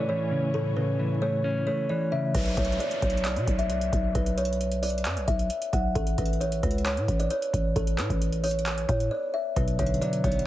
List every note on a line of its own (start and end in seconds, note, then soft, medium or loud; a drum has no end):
0.00 2.31 A2 medium
0.00 2.31 E3 medium
0.00 0.99 A3 medium
0.00 0.77 C#4 loud
0.00 2.31 C#4 medium
0.09 0.98 E3 medium
0.09 0.51 C#5 medium
0.31 0.75 C#3 medium
0.54 1.67 A2 medium
0.54 0.73 A4 medium
0.76 1.89 C#3 medium
0.76 0.95 B4 medium
0.99 1.89 E3 medium
1.22 1.66 A3 medium
1.22 1.64 C#5 medium
1.44 2.34 C#4 loud
1.67 2.34 A3 medium
1.67 1.86 C#5 medium
1.89 2.35 E3 medium
1.89 2.08 D5 medium
2.12 2.35 C#3 medium
2.12 2.31 E5 medium
2.35 2.56 B1 loud
2.35 2.53 B4 medium
2.35 kick loud
2.35 closed hi-hat medium
2.35 crash medium
2.35 downlifter medium
2.46 closed hi-hat medium
2.57 2.79 B1 loud
2.57 2.76 C#5 medium
2.57 kick loud
2.57 closed hi-hat medium
2.65 closed hi-hat medium
2.72 closed hi-hat soft
2.80 2.98 D5 medium
2.80 closed hi-hat medium
2.91 closed hi-hat medium
3.02 3.38 B1 loud
3.02 3.21 C#5 medium
3.02 kick medium
3.02 closed hi-hat medium
3.10 closed hi-hat medium
3.17 closed hi-hat medium
3.25 3.57 D5 medium
3.25 clap loud
3.25 closed hi-hat medium
3.36 3.47 B2 loud
3.36 closed hi-hat medium
3.47 3.91 B1 loud
3.47 kick loud
3.47 closed hi-hat medium
3.59 3.68 E5 medium
3.59 closed hi-hat medium
3.70 4.12 D5 medium
3.70 closed hi-hat medium
3.81 closed hi-hat medium
3.93 4.14 B1 loud
3.93 kick medium
3.93 closed hi-hat medium
4.15 5.07 B1 loud
4.15 4.34 B4 medium
4.15 kick loud
4.15 closed hi-hat medium
4.26 closed hi-hat medium
4.38 4.56 C#5 medium
4.38 closed hi-hat medium
4.45 closed hi-hat medium
4.53 closed hi-hat soft
4.61 closed hi-hat medium
4.72 closed hi-hat medium
4.83 5.25 D5 medium
4.83 closed hi-hat medium
4.83 open hi-hat medium
4.90 closed hi-hat medium
4.98 closed hi-hat medium
5.05 5.18 F#2 loud
5.05 clap loud
5.05 closed hi-hat medium
5.16 5.27 B1 loud
5.16 closed hi-hat medium
5.28 5.49 B1 loud
5.28 5.70 E5 medium
5.28 kick loud
5.28 closed hi-hat medium
5.39 closed hi-hat medium
5.50 closed hi-hat medium
5.62 closed hi-hat medium
5.73 5.95 B1 loud
5.73 5.92 F#5 medium
5.73 kick medium
5.73 closed hi-hat medium
5.95 6.17 A1 loud
5.95 6.14 A4 medium
5.95 kick loud
5.95 closed hi-hat medium
6.07 closed hi-hat medium
6.18 6.61 A1 loud
6.18 6.37 B4 medium
6.18 kick loud
6.18 closed hi-hat medium
6.26 closed hi-hat medium
6.33 closed hi-hat soft
6.41 6.59 C#5 medium
6.41 closed hi-hat medium
6.52 closed hi-hat medium
6.63 6.98 C#2 loud
6.63 6.82 B4 medium
6.63 kick medium
6.63 closed hi-hat medium
6.71 closed hi-hat medium
6.78 closed hi-hat medium
6.85 7.17 C#5 medium
6.85 clap loud
6.85 closed hi-hat medium
6.97 7.08 A2 loud
6.97 closed hi-hat medium
7.08 7.30 A1 loud
7.08 kick loud
7.08 closed hi-hat medium
7.19 7.29 D5 medium
7.19 closed hi-hat medium
7.30 7.73 C#5 medium
7.30 closed hi-hat medium
7.42 closed hi-hat medium
7.53 7.75 A1 loud
7.53 kick medium
7.53 closed hi-hat medium
7.76 8.00 A1 loud
7.76 7.95 A4 loud
7.76 kick loud
7.76 closed hi-hat medium
7.87 closed hi-hat medium
7.98 8.09 A2 loud
7.98 8.17 B4 medium
7.98 clap loud
7.98 closed hi-hat medium
8.10 8.86 A1 loud
8.10 kick loud
8.10 closed hi-hat medium
8.22 closed hi-hat medium
8.32 closed hi-hat medium
8.44 8.86 C#5 medium
8.44 closed hi-hat medium
8.44 open hi-hat medium
8.51 closed hi-hat medium
8.59 closed hi-hat medium
8.66 clap loud
8.66 closed hi-hat medium
8.78 closed hi-hat medium
8.89 9.10 A2 loud
8.89 9.07 C#5 medium
8.89 kick loud
8.89 closed hi-hat medium
9.00 closed hi-hat medium
9.11 9.30 D5 medium
9.34 9.53 E5 medium
9.56 9.78 B1 loud
9.56 10.47 B2 medium
9.56 9.75 B4 medium
9.56 kick loud
9.56 closed hi-hat medium
9.68 closed hi-hat medium
9.79 10.01 B1 loud
9.79 10.47 D3 medium
9.79 9.98 C#5 medium
9.79 kick loud
9.79 closed hi-hat medium
9.86 closed hi-hat medium
9.94 closed hi-hat soft
10.01 10.47 F#3 medium
10.01 10.20 D5 medium
10.01 closed hi-hat medium
10.13 closed hi-hat medium
10.24 10.47 B1 loud
10.24 10.47 B3 medium
10.24 10.43 C#5 medium
10.24 kick medium
10.24 closed hi-hat medium
10.32 closed hi-hat medium
10.39 closed hi-hat medium